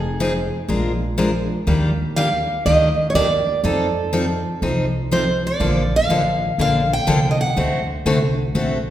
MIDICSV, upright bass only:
0, 0, Header, 1, 2, 480
1, 0, Start_track
1, 0, Tempo, 490998
1, 1633, Time_signature, 4, 2, 24, 8
1, 8702, End_track
2, 0, Start_track
2, 0, Title_t, "Upright bass"
2, 0, Program_c, 0, 32
2, 0, Note_on_c, 0, 29, 71
2, 477, Note_off_c, 0, 29, 0
2, 669, Note_on_c, 0, 34, 75
2, 1439, Note_off_c, 0, 34, 0
2, 1632, Note_on_c, 0, 39, 78
2, 2400, Note_off_c, 0, 39, 0
2, 2596, Note_on_c, 0, 38, 72
2, 3003, Note_off_c, 0, 38, 0
2, 3072, Note_on_c, 0, 39, 67
2, 3481, Note_off_c, 0, 39, 0
2, 3554, Note_on_c, 0, 41, 78
2, 4322, Note_off_c, 0, 41, 0
2, 4515, Note_on_c, 0, 36, 67
2, 5283, Note_off_c, 0, 36, 0
2, 5473, Note_on_c, 0, 34, 68
2, 5857, Note_off_c, 0, 34, 0
2, 5955, Note_on_c, 0, 33, 60
2, 6362, Note_off_c, 0, 33, 0
2, 6435, Note_on_c, 0, 34, 71
2, 6842, Note_off_c, 0, 34, 0
2, 6914, Note_on_c, 0, 36, 65
2, 7322, Note_off_c, 0, 36, 0
2, 7395, Note_on_c, 0, 38, 68
2, 7778, Note_off_c, 0, 38, 0
2, 7873, Note_on_c, 0, 36, 68
2, 8281, Note_off_c, 0, 36, 0
2, 8355, Note_on_c, 0, 34, 69
2, 8702, Note_off_c, 0, 34, 0
2, 8702, End_track
0, 0, End_of_file